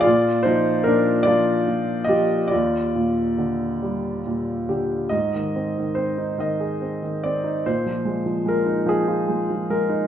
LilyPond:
<<
  \new Staff \with { instrumentName = "Grand piano" } { \time 6/8 \key aes \lydian \tempo 4. = 48 <f' d''>8 <ees' c''>8 <d' bes'>8 <f' d''>4 <g' ees''>8 | <f' d''>2 r8 g'8 | ees''4 c''8 ees''4 d''8 | c''4 bes'8 aes'4 bes'8 | }
  \new Staff \with { instrumentName = "Grand piano" } { \clef bass \time 6/8 \key aes \lydian bes,8 f8 bes,8 f8 bes,8 f8 | ees,8 bes,8 d8 g8 bes,8 d8 | aes,16 ees16 c'16 ees16 c'16 ees'16 ees16 aes'16 c'16 ees16 c'16 ees'16 | bes,16 f16 aes16 f16 aes16 ees'16 f16 f'16 aes16 f16 aes16 ees'16 | }
>>